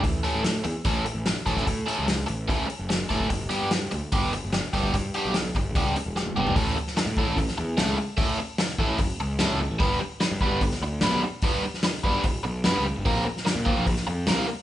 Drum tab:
HH |o-o-o-o-o-o-o-o-|o-o-o-o-o-o-o-o-|o-o-o-o-o-o-o-o-|o-o-o-o-o-o-----|
SD |----o-------o--o|----o-------o---|----o-------o---|----o-------o---|
T1 |----------------|----------------|----------------|-------------o--|
T2 |----------------|----------------|----------------|--------------o-|
FT |----------------|----------------|----------------|---------------o|
BD |o-------o-----oo|o-------o-----oo|o-------o-----oo|o-----o-o-------|

HH |o---o---o---o---|o---o---o---o---|o---o---o---o---|o---o---o---o---|
SD |---oo----o--o---|----o-------o---|----o----o--o---|---oo-------o---|
T1 |----------------|----------------|----------------|----------------|
T2 |----------------|----------------|----------------|----------------|
FT |----------------|----------------|----------------|----------------|
BD |o-----o-o-------|o-----o-o-------|o-----o-o-------|o-----o-o-------|

HH |o---o---o---o---|
SD |---oo----o--o---|
T1 |----------------|
T2 |----------------|
FT |----------------|
BD |o-----o-o-------|